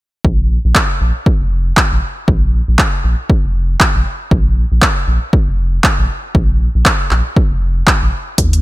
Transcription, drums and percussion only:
0.25 kick
0.75 kick, clap
1.26 kick
1.77 kick, clap
2.28 kick
2.79 kick, clap
3.30 kick
3.80 kick, clap
4.31 kick
4.82 kick, clap
5.33 kick
5.84 kick, clap
6.35 kick
6.86 kick, clap
7.11 clap
7.37 kick
7.87 kick, clap
8.38 kick, closed hi-hat
8.53 closed hi-hat

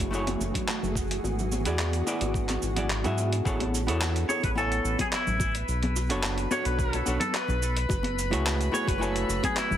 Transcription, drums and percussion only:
0.00 closed hi-hat, cabasa
0.13 cabasa
0.27 closed hi-hat, high bongo, high conga, cabasa
0.41 high conga, cabasa
0.54 kick, closed hi-hat, low conga, cabasa
0.68 clap, high bongo, cabasa
0.83 low conga, cabasa
0.95 kick, cabasa
1.11 closed hi-hat, cabasa
1.24 high bongo, high conga, cabasa
1.39 low conga, cabasa
1.52 high conga, cabasa
1.65 closed hi-hat, high bongo, cabasa
1.79 clap, cabasa
1.93 closed hi-hat, cabasa
2.07 cabasa
2.21 closed hi-hat, high bongo, cabasa
2.34 kick, cabasa
2.49 clap, closed hi-hat, high conga, cabasa
2.62 high bongo, high conga, cabasa
2.76 closed hi-hat, low conga, cabasa
2.90 clap, cabasa
3.04 closed hi-hat, low conga, cabasa
3.18 high bongo, cabasa
3.33 closed hi-hat, cabasa
3.46 kick, high bongo, cabasa
3.60 closed hi-hat, high conga
3.74 cabasa
3.88 closed hi-hat, cabasa
4.01 clap, high bongo, cabasa
4.16 closed hi-hat, cabasa
4.29 high conga, cabasa
4.43 kick, closed hi-hat, high bongo, cabasa
4.58 cabasa
4.72 closed hi-hat, cabasa
4.85 cabasa
4.98 kick, closed hi-hat, high bongo, high conga, low conga, cabasa
5.12 clap, cabasa
5.27 low conga, cabasa
5.40 kick, high bongo, cabasa
5.55 closed hi-hat, cabasa
5.68 cabasa
5.83 closed hi-hat, high conga, low conga
5.96 high bongo, cabasa
6.10 closed hi-hat, cabasa
6.23 clap, cabasa
6.38 closed hi-hat, high bongo, cabasa
6.51 high conga, cabasa
6.65 closed hi-hat, cabasa
6.79 kick, cabasa
6.93 closed hi-hat, high bongo, cabasa
7.06 cabasa
7.20 closed hi-hat, high conga, low conga, cabasa
7.33 clap, high bongo, cabasa
7.48 low conga, cabasa
7.62 cabasa
7.77 closed hi-hat, cabasa
7.89 kick, high bongo, cabasa
8.03 closed hi-hat, high conga
8.19 cabasa
8.30 closed hi-hat, high bongo, cabasa
8.46 clap, cabasa
8.61 closed hi-hat, cabasa
8.73 high conga, cabasa
8.87 kick, closed hi-hat, high bongo, cabasa
9.02 cabasa
9.16 closed hi-hat, cabasa
9.29 high bongo, cabasa
9.43 kick, closed hi-hat, high conga, low conga, cabasa
9.56 clap, cabasa
9.71 low conga, cabasa

